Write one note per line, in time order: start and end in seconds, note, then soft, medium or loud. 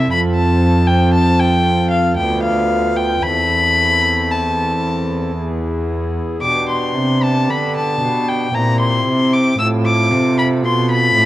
0.00 0.10 C3 medium
0.00 0.10 E5 medium
0.07 2.13 C4 medium
0.07 2.14 F4 medium
0.07 2.14 A4 medium
0.11 2.15 F2 medium
0.11 0.19 B5 loud
0.35 0.88 A5 medium
0.87 1.13 G5 medium
1.14 1.41 A5 medium
1.39 1.90 G5 medium
1.90 2.16 F5 medium
2.15 3.23 D2 medium
2.15 3.20 B3 soft
2.15 3.20 F4 soft
2.15 3.21 B4 soft
2.15 2.42 G5 medium
2.20 3.21 D2 medium
2.43 2.97 F5 medium
2.96 3.25 G5 medium
3.20 6.19 E2 medium
3.20 5.31 C4 soft
3.20 5.32 E4 soft
3.20 5.33 A4 soft
3.20 4.32 B5 loud
3.25 6.19 E2 medium
4.31 5.37 A5 medium
5.33 6.36 B3 soft
5.33 6.38 E4 soft
5.33 6.39 G#4 soft
6.38 8.48 B3 soft
6.38 8.48 D4 soft
6.38 8.49 G4 soft
6.38 6.67 D6 medium
6.42 6.97 B2 medium
6.42 6.92 B2 medium
6.69 7.24 C6 medium
6.95 7.50 C3 medium
6.95 7.45 C3 soft
7.23 7.52 A5 medium
7.49 8.01 D3 medium
7.49 7.98 D3 soft
7.49 7.76 B5 medium
7.76 8.30 A5 medium
8.02 8.53 B2 medium
8.02 8.51 B2 medium
8.28 8.56 G5 medium
8.49 9.53 C4 soft
8.49 9.55 E4 soft
8.49 9.56 G4 soft
8.54 9.06 A#2 medium
8.54 9.03 A#2 medium
8.54 8.79 A#5 medium
8.80 9.35 C6 medium
9.06 9.55 C3 medium
9.06 9.58 C3 medium
9.33 9.59 D6 medium
9.55 10.13 A2 medium
9.55 11.25 C4 soft
9.55 11.25 F4 medium
9.55 11.25 A4 medium
9.59 10.08 A2 medium
9.59 9.67 E6 medium
9.86 10.37 D6 loud
10.11 10.64 C3 medium
10.11 10.60 C3 medium
10.39 10.47 B5 medium
10.63 11.15 B2 medium
10.63 11.13 B2 medium
10.63 10.90 C6 medium
10.91 11.25 B5 loud
11.15 11.25 A2 medium